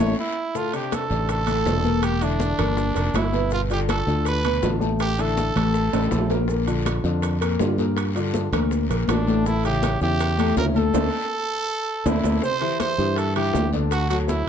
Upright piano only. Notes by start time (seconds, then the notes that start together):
0.00 A3 C#4 E4
0.55 A2 A3 A4
0.73 C3 C4 D4
1.10 C3 C4 D4
1.47 A2 A3 A4
1.66 C3 C4 D4
1.84 A#2 A#3 A#4
2.21 D3 D4 E4
2.58 A#2 A#3 A#4
2.94 A#2 A#3 A#4
3.32 B2 B3 B4
3.51 B2 B3 B4
3.70 D3 D4 F4
4.07 D3 D4 F4
4.44 B2 B3 B4
4.62 D3 D4 F4
4.80 A2 A3 A4
5.18 D3 D4 E4
5.56 A2 A3 A4
5.94 A2 A3 A4
6.30 A#2 A#3 A#4
6.49 A#2 A#3 A#4
6.67 D3 D4 F4
7.04 D3 D4 F4
7.41 A#2 A#3 A#4
7.60 D3 D4 F4
7.79 A#2 A#3 A#4
8.15 D3 D4 F4
8.53 A#2 A#3 A#4
8.89 A#2 A#3 A#4
9.27 A2 A3 A4
9.46 A2 A3 A4
9.64 C#3 C#4 E4
10.01 C#3 C#4 E4
10.38 A2 A3 A4
10.56 C#3 C#4 E4
10.75 A2 A3 A4
10.94 A3 C4 D4
12.05 A3 C4 D4
12.24 A3 C4 D4
12.43 C3 C4 C5
12.61 E3 E4 G4
12.98 E3 E4 G4
13.35 E3 E4 G4
13.73 D3 D4 D5
14.10 F#3 F#4 A4